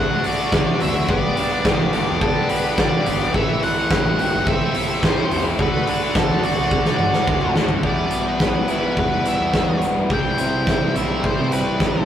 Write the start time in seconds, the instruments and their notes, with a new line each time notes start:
Already playing: overdriven electric guitar D3 F#3 A3 D4 A4, lead electric guitar F#5
0.11 overdriven electric guitar A3 D4 F#4
0.24 overdriven electric guitar A4, lead electric guitar D5, open hi-hat
0.40 overdriven electric guitar A3 D4 F#4
0.52 picked electric bass D2, overdriven electric guitar D3 A3 D4 F#4, kick, snare
0.80 picked electric bass D2, overdriven electric guitar D3 F#3 A3 D4, lead electric guitar E5, open hi-hat
0.84 overdriven electric guitar F#4
0.96 overdriven electric guitar A3 D4 F#4
1.09 picked electric bass G1, overdriven electric guitar G2 D3 G3 B3 D4 G4, lead electric guitar D5, kick
1.36 overdriven electric guitar G3 B3 D4 G4, open hi-hat
1.52 overdriven electric guitar G3 B3 D4 G4
1.65 overdriven electric guitar G2 D3 G3 B3 D4 G4, kick, snare
1.79 picked electric bass G1, overdriven electric guitar G3 B3 D4 G4
1.93 overdriven electric guitar G3 B3 D4 G4 A4, open hi-hat
2.06 overdriven electric guitar G3 B3 D4 G4
2.10 picked electric bass E1
2.21 overdriven electric guitar D4, lead electric guitar A4, kick
2.36 overdriven electric guitar G3 B3 D4 G4
2.49 overdriven electric guitar A4, lead electric guitar B4, open hi-hat
2.64 overdriven electric guitar G3 B3 D4 G4
2.78 picked electric bass G1, overdriven electric guitar G2 D3 G3 B3 D4 G4, lead electric guitar D5, kick, snare
3.06 picked electric bass G1, overdriven electric guitar G3 B3 D4 G4, open hi-hat
3.21 overdriven electric guitar G3 B3 D4 G4
3.34 picked electric bass A1, overdriven electric guitar A2 E3 C4 E4 A4, lead electric guitar E5, kick
3.62 overdriven electric guitar E3 A3 C4 E4 A4, lead electric guitar F#5, open hi-hat
3.78 overdriven electric guitar C4 E4 A4
3.90 overdriven electric guitar A2 E3 A3 C4 E4, kick, snare
3.94 overdriven electric guitar A4
4.06 picked electric bass A1, overdriven electric guitar C4 E4 A4
4.18 overdriven electric guitar E3 C4 E4 G4 A4, open hi-hat
4.32 picked electric bass G1, overdriven electric guitar C4 E4 A4
4.47 overdriven electric guitar C4, lead electric guitar E5, kick
4.61 overdriven electric guitar C4 E4 A4
4.75 overdriven electric guitar G4, open hi-hat
4.89 overdriven electric guitar C4 E4 A4
5.03 picked electric bass A1, overdriven electric guitar A2 E3 C4 E4 A4, lead electric guitar C5, kick, snare
5.31 picked electric bass E2, overdriven electric guitar E3 C4 E4 A4, open hi-hat
5.44 overdriven electric guitar C4 E4 A4
5.58 picked electric bass D2, overdriven electric guitar D3 A3 D4 F#4 A4, lead electric guitar B4, kick
5.87 overdriven electric guitar D3 D4 F#4 A4, open hi-hat
6.02 overdriven electric guitar D4 F#4 A4
6.15 overdriven electric guitar D3 A3 D4 F#4 A4, lead electric guitar A4, kick, snare
6.29 picked electric bass D2, overdriven electric guitar D4 F#4 A4
6.42 overdriven electric guitar D3 D4 F#4 A4, lead electric guitar D5, open hi-hat
6.57 picked electric bass C2, overdriven electric guitar D4 F#4 A4
6.71 overdriven electric guitar D4, kick, high tom
6.85 overdriven electric guitar D4 F#4 A4, snare
6.99 overdriven electric guitar F#4, mid tom
7.13 overdriven electric guitar D4 F#4 A4, snare
7.27 picked electric bass D2, overdriven electric guitar D3 D4 F#4 A4, kick, mid tom
7.41 picked electric bass C2, mid tom
7.54 picked electric bass D2, overdriven electric guitar D3 A3 D4 F#4 A4, snare
7.69 overdriven electric guitar D4 F#4 A4, floor tom
7.73 picked electric bass E2
7.82 overdriven electric guitar E2 B2 E3 G3 B3 E4, picked electric bass E2, kick
7.87 lead electric guitar D5
8.11 closed hi-hat
8.28 lead electric guitar B4
8.40 picked electric bass B1, kick, snare
8.67 overdriven electric guitar E2 B2 E3 G3 B3 E4, lead electric guitar B4, closed hi-hat
8.97 picked electric bass E2, lead electric guitar B4, kick
9.25 lead electric guitar E5, closed hi-hat
9.40 picked electric bass E2
9.54 kick, snare
9.82 closed hi-hat
9.98 picked electric bass G2
10.10 picked electric bass C2, overdriven electric guitar C3 E3 G3 C4 E4, lead electric guitar G5, kick
10.38 picked electric bass C3, closed hi-hat
10.67 kick, snare
10.95 picked electric bass B1, overdriven electric guitar C3 E3 G3 C4 E4, lead electric guitar E5, closed hi-hat
11.24 lead electric guitar C5, kick
11.40 picked electric bass C3
11.52 lead electric guitar B4, closed hi-hat
11.80 kick, snare
11.97 picked electric bass A#1